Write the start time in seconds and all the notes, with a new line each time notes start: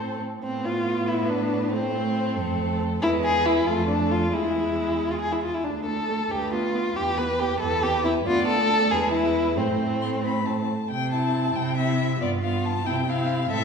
Already playing: A2 C4 A4
0.42 A2 B3 C4
0.65 F4
1.08 E4 B4
1.30 D4
1.73 A3 C4 C5
2.37 F2 A3 A4
3.02 E2 G#3 E4 B4
3.24 G#4
3.46 E4
3.67 F2 A3 F4 A4
3.89 D4
4.11 F4
4.32 E2 G#3 E4 G#4
5.11 F4
5.21 G#4
5.32 E4
5.43 F4
5.54 E4
5.64 D2 D4
5.86 A3 A4
6.09 A3
6.30 D2 G4 B4
6.53 B3 F4
6.74 B3
6.96 E2 G4 B4
7.18 B3 B4
7.39 B3 G4
7.60 E2 A4
7.83 C4 G4
8.05 C4 E4
8.26 D2 B3 F4 D5
8.48 A4
8.58 A3
8.91 E2 G#3 G#4 B4
9.13 E4
9.57 A2 A3 C4 C5
10.01 C6
10.25 B5
10.46 A5
10.90 C3 G5
11.12 C4 E4 A5
11.55 C3 G5
11.77 C4 E4 E5
12.19 G2 B3 F4 D5
12.41 B3 F4 F5
12.65 A5
12.85 C3 C4 E4 G5
13.07 C4 E4 F5
13.51 A2 C4 A4 E5